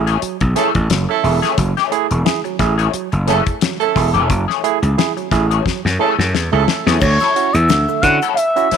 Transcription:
Already playing: slap bass A1
0.07 clean electric guitar E3 A3 C#4 G#4, closed hi-hat
0.22 tine electric piano F#3, muted clean electric guitar stroke, muted slap bass stroke, closed hi-hat
0.40 slap bass B1, muted clean electric guitar stroke, kick, closed hi-hat
0.55 clean electric guitar E3 A3 C#4 A4, tine electric piano A3 E4 G#4, horn section A3 C#4 E4 A4, snare, closed hi-hat
0.75 slap bass A1, tine electric piano E4 G#4, muted clean electric guitar stroke, kick, closed hi-hat
0.90 slap bass F#1, tine electric piano F#3, muted clean electric guitar stroke, snare, closed hi-hat
1.09 horn section A3 C#4 E4 A4, muted clean electric guitar stroke
1.24 slap bass E1, tine electric piano A3 E4 G#4, open hi-hat
1.42 clean electric guitar E3 A3 C#4 G#4, snare, closed hi-hat
1.58 slap bass F#1, tine electric piano F#3, muted clean electric guitar stroke, kick, closed hi-hat
1.77 clean electric guitar E3 A3 C#4 G#4, snare, closed hi-hat
1.91 tine electric piano A3 E4 G#4, muted clean electric guitar stroke, closed hi-hat
2.11 slap bass E1, tine electric piano E4 G#4, muted clean electric guitar stroke, closed hi-hat
2.25 tine electric piano E4 G#4, muted clean electric guitar stroke, snare, closed hi-hat
2.44 tine electric piano F#3, muted clean electric guitar stroke, closed hi-hat
2.59 slap bass A1, tine electric piano E4 G#4, kick, snare, closed hi-hat
2.78 clean electric guitar E3 A3 C#4 G#4, closed hi-hat
2.93 tine electric piano F#3, muted clean electric guitar stroke, muted slap bass stroke, closed hi-hat
3.12 slap bass F#1, muted clean electric guitar stroke, closed hi-hat
3.27 clean electric guitar E3 A3 C#4 A4, tine electric piano A3 E4 G#4, horn section A3 C#4 E4 A4, snare, closed hi-hat
3.46 tine electric piano E4 G#4, muted clean electric guitar stroke, kick, closed hi-hat
3.61 tine electric piano F#3, muted clean electric guitar stroke, snare, closed hi-hat
3.80 horn section A3 C#4 E4 A4, muted clean electric guitar stroke, closed hi-hat
3.96 slap bass E1, tine electric piano A3 E4 G#4, kick, snare, open hi-hat
4.14 slap bass E1, clean electric guitar E3 A3 C#4 G#4, tine electric piano E4 G#4, closed hi-hat
4.29 slap bass F#1, tine electric piano F#3, muted clean electric guitar stroke, kick, closed hi-hat
4.48 clean electric guitar E3 A3 C#4 G#4, snare
4.63 tine electric piano A3 E4 G#4, muted clean electric guitar stroke, closed hi-hat
4.82 slap bass C#2, tine electric piano E4 G#4, muted clean electric guitar stroke, closed hi-hat
4.98 tine electric piano E4 G#4, muted clean electric guitar stroke, snare, closed hi-hat
5.17 tine electric piano F#3, muted clean electric guitar stroke, closed hi-hat
5.31 slap bass A1, tine electric piano E4 G#4, kick, snare, closed hi-hat
5.51 clean electric guitar E3 A3 C#4 G#4, closed hi-hat
5.66 tine electric piano F#3, muted clean electric guitar stroke, kick, snare
5.85 slap bass F#2, muted clean electric guitar stroke, snare
5.99 clean electric guitar E3 A3 C#4 A4, tine electric piano A3 E4 G#4, horn section A3 C#4 E4 A4
6.18 slap bass F#2, tine electric piano E4 G#4, snare
6.33 slap bass E2, muted clean electric guitar stroke, snare
6.52 slap bass C#2, tine electric piano A3 E4 G#4, horn section A3 C#4 E4 A4, muted clean electric guitar stroke
6.68 snare
6.86 slap bass E2, clean electric guitar E3 A3 C#4 G#4, tine electric piano F#3, snare
7.01 slap bass D2, tine electric piano D3 A3, analog synth lead C#5, kick, crash, shaker
7.20 clean electric guitar F#3 C#4 E4 A4, tine electric piano E4 F#4, snare, closed hi-hat, shaker
7.36 tine electric piano C#4 E4 F#4, muted clean electric guitar stroke, closed hi-hat
7.53 slap bass E2, analog synth lead E5, muted clean electric guitar stroke, closed hi-hat, shaker
7.69 slap bass D2, tine electric piano E4 F#4, muted clean electric guitar stroke, snare, closed hi-hat, shaker
7.88 tine electric piano D3 A3, muted clean electric guitar stroke, shaker
8.02 slap bass D3, tine electric piano C#4 E4 F#4, analog synth lead F#5, kick, snare, closed hi-hat, shaker
8.22 clean electric guitar F#3 C#4 E4 A4, closed hi-hat, shaker
8.35 analog synth lead E5, muted clean electric guitar stroke, closed hi-hat, shaker
8.56 tine electric piano C#4 E4 F#4, muted clean electric guitar stroke, closed hi-hat, shaker
8.71 clean electric guitar F#3 C#4 E4 B4, muted slap bass stroke, snare, closed hi-hat

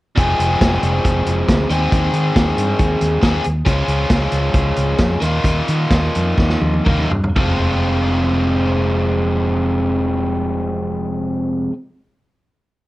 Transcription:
0.16 fingered electric bass F1, overdriven electric guitar F2 C3 F3 G#3 C4 G#4, kick, closed hi-hat
0.40 fingered electric bass F1, closed hi-hat
0.61 fingered electric bass F1, kick, snare, closed hi-hat
0.83 fingered electric bass F1, closed hi-hat
1.05 fingered electric bass F1, kick, closed hi-hat
1.26 fingered electric bass F1, closed hi-hat
1.48 fingered electric bass D2, kick, snare, closed hi-hat
1.70 fingered electric bass D#2, overdriven electric guitar D#3 G#3 C4 G#4, closed hi-hat
1.92 fingered electric bass D#2, kick, closed hi-hat
2.13 fingered electric bass D#3, closed hi-hat
2.36 fingered electric bass D#2, kick, snare, closed hi-hat
2.57 fingered electric bass G2, closed hi-hat
2.79 fingered electric bass D#2, kick, closed hi-hat
3.01 fingered electric bass D#2, closed hi-hat
3.22 fingered electric bass D#2, overdriven electric guitar D#3 G#3 C4 G#4, kick, snare, closed hi-hat
3.44 fingered electric bass D#2, closed hi-hat
3.65 fingered electric bass C#2, overdriven electric guitar C#3 F3 G#3 C#4 F4, kick, closed hi-hat
3.88 fingered electric bass C#2, closed hi-hat
4.09 fingered electric bass C#2, kick, snare, closed hi-hat
4.31 fingered electric bass C#2, closed hi-hat
4.54 fingered electric bass C#2, kick, closed hi-hat
4.76 fingered electric bass C#2, closed hi-hat
4.98 fingered electric bass F2, kick, snare, closed hi-hat
5.20 fingered electric bass D#2, overdriven electric guitar D#3 A#3 D#4 F4, closed hi-hat
5.44 fingered electric bass D#2, kick, closed hi-hat
5.68 fingered electric bass D#3, closed hi-hat
5.90 fingered electric bass D#2, kick, snare, closed hi-hat
6.15 fingered electric bass F2, closed hi-hat
6.38 fingered electric bass D#2, kick, snare
6.50 snare
6.62 fingered electric bass D#2, high tom
6.74 high tom
6.85 fingered electric bass D#2, overdriven electric guitar D#3 A#3 D#4 F4, kick, mid tom
6.99 mid tom
7.11 fingered electric bass G2, floor tom
7.24 floor tom
7.36 fingered electric bass F1, overdriven electric guitar F2 C3 F3 G#3 C4, kick, floor tom
7.40 overdriven electric guitar F4

